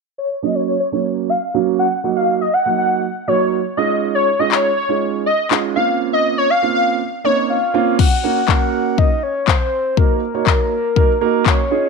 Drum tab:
CC |--------|--------|--------|--------|
CP |--------|--------|--x---x-|--------|
BD |--------|--------|--------|--------|

CC |x-------|--------|
CP |--x---x-|--x---x-|
BD |o-o-o-o-|o-o-o-o-|